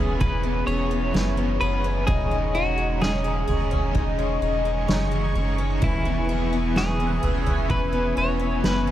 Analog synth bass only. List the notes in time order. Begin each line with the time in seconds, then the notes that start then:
Already playing: E1
0.68 E1
1.15 F#1
1.61 F#1
2.08 E1
3.48 E1
4.42 E1
4.89 F#1
5.35 F#1
5.83 E1
7.24 E1
8.17 E1
8.64 F#1